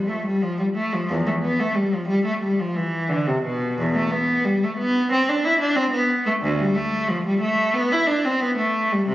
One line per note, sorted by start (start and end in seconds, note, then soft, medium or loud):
0.08 0.25 A3 medium
0.26 0.42 G3 medium
0.42 0.59 F3 medium
0.59 0.66 G3 medium
0.76 0.92 A3 medium
0.93 1.10 F3 medium
1.09 1.26 E2 medium
1.27 1.33 A3 medium
1.43 1.59 B3 medium
1.60 1.77 A3 medium
1.75 1.93 G3 medium
1.94 2.10 F3 medium
2.08 2.25 G3 medium
2.25 2.42 A3 medium
2.40 2.58 G3 medium
2.59 2.76 F3 medium
2.75 3.09 E3 medium
3.09 3.26 D3 medium
3.27 3.44 C3 medium
3.42 3.77 B2 medium
3.78 3.95 E2 medium
3.95 4.12 A3 medium
4.10 4.45 B3 medium
4.45 4.62 G3 medium
4.63 4.79 A3 medium
4.78 5.10 B3 loud
5.12 5.27 C4 medium
5.29 5.44 D4 medium
5.44 5.60 E4 medium
5.60 5.76 D4 medium
5.76 5.92 C4 medium
5.92 6.24 B3 medium
6.26 6.33 A3 medium
6.42 6.59 D2 medium
6.59 6.76 G3 medium
6.75 7.09 A3 medium
7.08 7.25 F3 medium
7.27 7.42 G3 medium
7.42 7.74 A3 medium
7.74 7.91 B3 medium
7.92 8.08 E4 medium
8.07 8.24 D4 medium
8.25 8.42 C4 medium
8.41 8.58 B3 medium
8.58 8.91 A3 medium
8.92 9.09 G3 medium
9.09 9.15 C3 medium